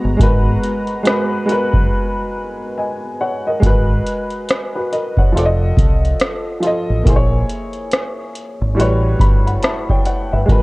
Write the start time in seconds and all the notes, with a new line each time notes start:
Already playing: G#3 B3 F#4 A#4 B4 A#5
0.04 G1
0.17 G#1 G#3 F#4, kick, closed hi-hat
0.21 A#4 B4
0.64 closed hi-hat
0.87 closed hi-hat
1.03 G#3 F#4, closed hi-hat
1.07 A#4 B4, cross-stick
1.46 G#3 F#4, closed hi-hat
1.50 A#4 B4
1.74 F#1, kick
2.78 D#5 G#5
3.21 C#5 F#5
3.47 A#4 D#5
3.60 G#1 G#3 F#4, kick, closed hi-hat
3.65 A#4 B4
4.07 closed hi-hat
4.30 closed hi-hat
4.49 cross-stick, closed hi-hat
4.75 F#4 B4
4.92 A#4 D#5, closed hi-hat
5.17 F#1 C#5 F#5, kick
5.32 F1 F3 F4
5.36 A4 D5, closed hi-hat
5.45 D#5
5.77 C2, kick, closed hi-hat
6.05 closed hi-hat
6.20 cross-stick, closed hi-hat
6.60 F3 F4, closed hi-hat
6.64 A4 D#5
6.90 A1
7.03 A#1 A#3 E4, kick, closed hi-hat
7.07 G#4 C5
7.16 C#5
7.50 closed hi-hat
7.73 closed hi-hat
7.91 cross-stick, closed hi-hat
8.35 closed hi-hat
8.62 G#1
8.75 A1 A2 G3 F#4
8.79 B4 C#5, closed hi-hat
9.20 G1 B5, kick, closed hi-hat
9.47 F#5 B5, closed hi-hat
9.63 E5 A5, cross-stick, closed hi-hat
9.89 C#5 G5, kick
10.05 C#5 F#5, closed hi-hat
10.33 G1 B4 E5
10.46 G#1 G#3 F#4, kick, closed hi-hat
10.50 A#4 B4